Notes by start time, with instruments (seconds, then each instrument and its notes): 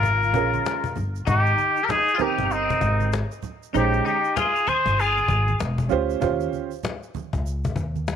Already playing: upright bass G#1, clean electric guitar F4, muted trumpet A#4
0.03 cajon bass, cajon slap, shaker
0.23 high conga, shaker
0.33 upright bass A#1, upright piano C#4 F4 G#4 A#4, cajon bass, shaker
0.54 high conga, shaker
0.65 cajon slap, shaker
0.84 cajon bass, shaker
0.96 upright bass G1, cajon slap, low conga, shaker
1.16 shaker
1.27 upright bass G#1, clean electric guitar D#4, muted trumpet G4, cajon bass, shaker
1.46 shaker
1.58 cajon slap, high conga, shaker
1.77 shaker
1.83 clean electric guitar G4, muted trumpet A#4
1.89 clean electric guitar D#4, muted trumpet G#4, cajon slap, low conga, shaker
2.08 shaker
2.15 upright piano C4, clean electric guitar F4, muted trumpet G#4
2.19 upright piano D#4 G4 A#4, clean electric guitar D#4, muted trumpet G4, high conga, low conga, shaker
2.38 upright bass G1, cajon bass, shaker
2.51 clean electric guitar C4, muted trumpet D#4, cajon slap, shaker
2.69 cajon bass, high conga, shaker
2.81 upright bass G#1, cajon bass, shaker
3.00 high conga, shaker
3.12 cajon slap, shaker
3.31 shaker
3.43 cajon slap, low conga, shaker
3.63 shaker
3.73 upright bass A#1, upright piano G#3 C#4 D#4 C5, clean electric guitar D#4, muted trumpet G4, shaker
3.94 shaker
4.05 clean electric guitar D#4, muted trumpet G4, cajon slap, high conga, shaker
4.24 shaker
4.36 clean electric guitar F4, muted trumpet G#4, cajon slap, low conga, shaker
4.56 shaker
4.67 clean electric guitar G#4, muted trumpet C5, high conga, low conga, shaker
4.86 upright bass G1, cajon bass, shaker
4.98 clean electric guitar F4, muted trumpet G#4, cajon slap, shaker
5.18 high conga, shaker
5.28 upright bass G#1, cajon bass, shaker
5.48 high conga, shaker
5.60 upright bass E1, cajon slap, shaker
5.78 cajon bass, shaker
5.89 upright bass D2, upright piano C#4 F4 G4 C5, low conga, shaker
6.10 shaker
6.20 upright bass D#2, upright piano C#4 F4 G4 C5, cajon bass, shaker
6.40 cajon slap, shaker
6.53 cajon slap, high conga, shaker
6.71 shaker
6.83 cajon slap, low conga, shaker
7.03 shaker
7.15 cajon slap, high conga, low conga, shaker
7.33 upright bass C#2, cajon bass, shaker
7.46 cajon slap, shaker
7.64 cajon bass, high conga, shaker
7.76 upright bass D#2, cajon bass, shaker
7.96 high conga, shaker
8.07 cajon slap, shaker